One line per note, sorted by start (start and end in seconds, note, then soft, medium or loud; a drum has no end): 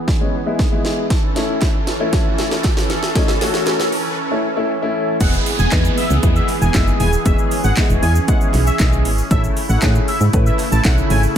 0.00 5.16 E3 medium
0.00 1.06 B3 medium
0.00 1.06 G#4 medium
0.00 riser medium
0.08 kick loud
0.08 snare medium
0.20 0.34 G#3 medium
0.20 0.34 B3 medium
0.20 0.34 C#4 medium
0.46 0.59 G#3 medium
0.46 0.60 B3 medium
0.46 0.60 E4 loud
0.59 kick loud
0.59 snare medium
0.72 1.05 G#3 medium
0.72 1.05 B3 medium
0.72 1.05 E4 loud
0.85 snare medium
1.10 5.17 C#4 medium
1.10 5.17 A4 medium
1.10 kick loud
1.10 snare medium
1.10 closed hi-hat medium
1.36 1.69 A3 medium
1.36 1.69 C#4 medium
1.36 1.69 E4 medium
1.36 snare medium
1.36 closed hi-hat medium
1.61 kick loud
1.61 snare medium
1.61 clap medium
1.61 closed hi-hat medium
1.87 snare loud
1.87 closed hi-hat medium
2.00 2.53 A3 medium
2.00 2.53 C#4 medium
2.00 2.53 E4 loud
2.13 kick loud
2.13 snare loud
2.13 closed hi-hat medium
2.38 snare loud
2.38 closed hi-hat medium
2.51 snare loud
2.64 kick loud
2.64 snare loud
2.64 clap medium
2.64 closed hi-hat medium
2.77 snare loud
2.90 snare loud
2.90 closed hi-hat medium
3.03 snare loud
3.15 3.29 A3 loud
3.15 3.29 C#4 medium
3.15 3.29 D#4 loud
3.15 kick loud
3.15 snare loud
3.15 closed hi-hat medium
3.28 snare loud
3.41 3.87 A3 medium
3.41 3.87 C#4 medium
3.41 3.88 F#4 loud
3.41 snare loud
3.41 open hi-hat medium
3.54 snare loud
3.67 snare loud
3.67 clap medium
3.67 closed hi-hat medium
3.80 snare loud
3.92 open hi-hat medium
4.31 4.44 A3 medium
4.31 4.44 C#4 medium
4.31 4.44 E4 medium
4.56 4.70 A3 medium
4.56 4.70 C#4 medium
4.56 4.70 E4 loud
4.82 5.15 A3 medium
4.82 5.15 C#4 medium
4.82 5.15 E4 loud
5.20 5.37 E1 loud
5.20 9.27 E3 medium
5.20 5.47 G#3 medium
5.20 7.24 B3 medium
5.20 5.47 B3 medium
5.20 5.47 E4 medium
5.20 9.27 G#4 loud
5.20 5.47 G#4 medium
5.20 5.32 F#5 loud
5.20 kick loud
5.20 closed hi-hat loud
5.20 crash loud
5.20 downlifter medium
5.20 shaker medium
5.34 shaker medium
5.46 open hi-hat medium
5.46 shaker medium
5.59 5.67 E1 medium
5.59 5.81 G#5 medium
5.59 shaker medium
5.72 5.89 E2 loud
5.72 5.98 G#3 medium
5.72 5.98 B3 medium
5.72 5.98 E4 medium
5.72 5.98 B4 loud
5.72 kick loud
5.72 snare medium
5.72 clap loud
5.72 closed hi-hat medium
5.72 shaker medium
5.85 shaker medium
5.98 6.09 E5 medium
5.98 open hi-hat medium
5.98 shaker medium
6.10 6.19 C#2 medium
6.10 shaker medium
6.23 6.40 E2 loud
6.23 6.49 G#3 medium
6.23 6.50 B3 medium
6.23 6.50 E4 medium
6.23 6.50 G#4 medium
6.23 kick loud
6.23 closed hi-hat medium
6.23 shaker medium
6.36 6.47 E5 medium
6.36 shaker medium
6.49 clap medium
6.49 open hi-hat medium
6.49 shaker medium
6.62 6.70 E1 loud
6.62 6.73 G#5 medium
6.62 shaker medium
6.74 6.91 F#1 medium
6.74 7.01 G#3 medium
6.74 7.01 B3 medium
6.74 7.01 E4 medium
6.74 7.01 G#4 loud
6.74 6.86 E5 medium
6.74 kick loud
6.74 snare loud
6.74 clap loud
6.74 clap medium
6.74 closed hi-hat medium
6.74 shaker medium
6.87 shaker medium
7.00 7.17 D#1 loud
7.00 7.11 G#5 loud
7.00 open hi-hat medium
7.00 shaker medium
7.13 shaker medium
7.25 7.34 E1 loud
7.25 7.52 G#3 medium
7.25 7.52 B3 medium
7.25 9.29 C#4 medium
7.25 7.52 E4 medium
7.25 7.52 G#4 medium
7.25 7.37 E5 loud
7.25 kick loud
7.25 closed hi-hat medium
7.25 shaker medium
7.39 shaker medium
7.51 open hi-hat medium
7.51 shaker medium
7.64 7.73 G#1 medium
7.64 7.86 F#5 medium
7.64 shaker medium
7.77 8.03 G#3 medium
7.77 8.03 B3 medium
7.77 8.04 E4 medium
7.77 8.04 G#4 loud
7.77 kick loud
7.77 snare medium
7.77 clap loud
7.77 closed hi-hat medium
7.77 shaker medium
7.90 7.98 E1 loud
7.90 shaker medium
8.03 8.19 E2 loud
8.03 8.14 G#5 medium
8.03 open hi-hat medium
8.03 shaker medium
8.15 shaker medium
8.28 8.55 G#3 medium
8.28 8.55 B3 medium
8.28 8.55 E4 medium
8.28 8.55 G#4 medium
8.28 8.39 F#5 medium
8.28 kick loud
8.28 closed hi-hat medium
8.28 shaker medium
8.41 shaker medium
8.54 8.71 B1 medium
8.54 clap medium
8.54 open hi-hat medium
8.54 shaker medium
8.67 8.89 E5 medium
8.67 shaker medium
8.79 9.07 B1 loud
8.79 9.06 G#3 medium
8.79 9.06 B3 medium
8.79 9.06 E4 medium
8.79 9.06 G#4 loud
8.79 kick loud
8.79 snare loud
8.79 clap medium
8.79 clap loud
8.79 closed hi-hat medium
8.79 shaker medium
8.93 shaker medium
9.05 9.22 G#1 medium
9.05 open hi-hat medium
9.05 shaker medium
9.18 shaker medium
9.31 9.48 A1 loud
9.31 11.38 C#3 medium
9.31 9.57 A3 medium
9.31 11.38 A3 medium
9.31 9.57 C#4 medium
9.31 11.38 E4 medium
9.31 9.57 E4 medium
9.31 9.58 A4 medium
9.31 9.42 E5 loud
9.31 kick loud
9.31 closed hi-hat medium
9.31 shaker medium
9.44 shaker medium
9.57 open hi-hat medium
9.57 shaker medium
9.69 9.78 A1 loud
9.69 9.92 F#5 medium
9.69 shaker medium
9.82 9.99 A2 loud
9.82 10.09 A3 medium
9.82 10.09 C#4 medium
9.82 10.09 E4 medium
9.82 10.09 G#4 loud
9.82 kick loud
9.82 snare medium
9.82 clap loud
9.82 closed hi-hat medium
9.82 shaker medium
9.95 shaker medium
10.08 10.19 E5 medium
10.08 open hi-hat medium
10.08 shaker medium
10.21 10.29 G#2 medium
10.21 shaker medium
10.33 10.50 A2 loud
10.33 10.60 A3 medium
10.33 10.60 C#4 medium
10.33 10.60 E4 medium
10.33 10.60 B4 medium
10.33 kick loud
10.33 closed hi-hat medium
10.33 shaker medium
10.46 10.57 E5 medium
10.46 shaker medium
10.59 clap medium
10.59 open hi-hat medium
10.59 shaker medium
10.72 10.80 A1 loud
10.72 10.83 A5 medium
10.72 shaker medium
10.85 11.02 B1 loud
10.85 11.11 A3 medium
10.85 11.11 C#4 medium
10.85 11.11 E4 medium
10.85 11.11 A4 medium
10.85 10.96 F#5 medium
10.85 kick loud
10.85 snare loud
10.85 clap medium
10.85 clap loud
10.85 closed hi-hat medium
10.85 shaker medium
10.98 shaker medium
11.10 11.27 G#1 loud
11.10 11.22 G#5 medium
11.10 open hi-hat medium
11.10 shaker medium
11.23 shaker medium